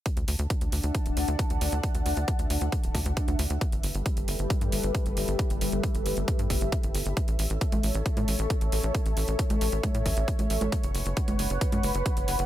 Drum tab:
HH |xxoxxxoxxxoxxxox|xxoxxxoxxxoxxxox|xxoxxxoxxxoxxxox|xxoxxxoxxxoxxxox|
CG |----------------|----------------|----------------|----------------|
BD |o---o---o---o---|o---o---o-o-o---|o---o---o---o---|o---o---o-o-o---|

HH |xxoxxxoxxxoxxxox|xxoxxxoxxxoxxxox|xxoxxxoxxxoxxxox|
CG |-----o---o------|-----o--o----o-o|-----o---o------|
BD |o---o---o---o---|o---o---o-o-o---|o---o---o---o---|